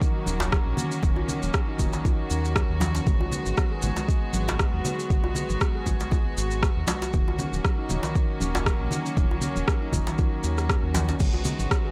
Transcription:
Already playing: D#3 F#3 A#3 C#4 F#4
0.01 D#4, kick, maracas
0.15 F#3
0.26 D#1 C#4, high conga, maracas
0.40 djembe slap, maracas
0.52 kick, cross-stick, high conga, maracas
0.66 A#1
0.77 D#3, low conga, maracas
0.91 C#4, maracas
1.03 D#1 D#3, kick, low conga, maracas
1.16 djembe tone
1.28 C#4, low conga, maracas
1.43 D#1, high conga, maracas
1.54 F#3, kick, cross-stick, maracas
1.68 D#4
1.78 D#1 D#3, kick, high conga, djembe tone, low conga, maracas
1.93 D#3, djembe slap, maracas
2.05 D#4, kick, djembe tone, maracas
2.19 F#3
2.30 D#2 C#4, maracas
2.45 maracas
2.56 kick, cross-stick, maracas
2.70 D#2
2.80 D#3, djembe slap, high conga, maracas
2.95 C#4, djembe slap, maracas
3.06 G#1 F#3 G#3 B3, kick, high conga, low conga, maracas
3.20 djembe tone
3.32 F#4, low conga, maracas
3.46 G#1, high conga, maracas
3.57 B3, kick, cross-stick, maracas
3.71 G#4
3.82 G#1 G#3, high conga, low conga, maracas
3.96 G#3, djembe slap, maracas
4.09 G#4, kick, maracas
4.22 B3
4.33 G#1 F#4, high conga, maracas
4.48 djembe slap, maracas
4.59 kick, cross-stick, high conga, maracas
4.73 D#2
4.84 G#3, low conga, maracas
4.98 F#4, maracas
5.10 G#1 G#3, kick, low conga, maracas
5.24 djembe tone
5.35 F#4, low conga, maracas
5.50 G#1, high conga, maracas
5.61 B3, kick, cross-stick, maracas
5.75 G#4
5.86 G#1 G#3, kick, djembe tone, high conga, low conga, maracas
6.00 G#3, djembe slap, maracas
6.11 G#4, kick, djembe tone, maracas
6.26 B3
6.37 G#1 F#4, maracas
6.51 maracas
6.63 kick, cross-stick, maracas
6.77 D#2
6.87 G#3, djembe slap, high conga, maracas
7.02 F#4, djembe slap, maracas
7.13 D#1 D#3 F#3 A#3 C#4, kick, high conga, low conga, maracas
7.28 djembe tone
7.39 C#4, low conga, maracas
7.52 D#1, high conga, maracas
7.64 F#3, kick, cross-stick, maracas
7.78 D#4
7.89 D#1 D#3, high conga, low conga, maracas
8.03 D#3, djembe slap, maracas
8.15 D#4, kick, maracas
8.29 F#3
8.40 D#1 C#4, high conga, maracas
8.55 djembe slap, maracas
8.66 kick, cross-stick, high conga, maracas
8.80 A#1
8.91 D#3, low conga, maracas
9.05 C#4, maracas
9.17 D#1 D#3, kick, high conga, low conga, maracas
9.31 djembe tone
9.42 C#4, low conga, maracas
9.56 D#1, high conga, maracas
9.68 F#3, kick, cross-stick, maracas
9.82 D#4
9.92 D#1 D#3, kick, djembe tone, high conga, low conga, maracas
10.07 D#3, djembe slap, maracas
10.18 D#4, kick, djembe tone, maracas
10.32 F#3
10.44 D#2 C#4, maracas
10.58 cross-stick, maracas
10.70 kick, cross-stick, maracas
10.83 D#2
10.94 D#3, djembe slap, high conga, maracas
11.09 C#4, djembe slap, maracas
11.20 G#1 D#3 F#3 G#3 B3 F#4, kick, crash, high conga, low conga, maracas
11.34 djembe tone
11.45 F#4, low conga, maracas
11.59 G#1, high conga, maracas
11.71 B3, kick, cross-stick, maracas
11.85 G#4

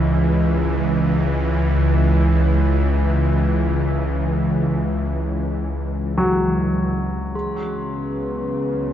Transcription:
Already playing: C#2 G#2 E3
6.18 F#3
7.35 C#2 C#3 C#4 G#4
7.84 B4
8.66 F#4

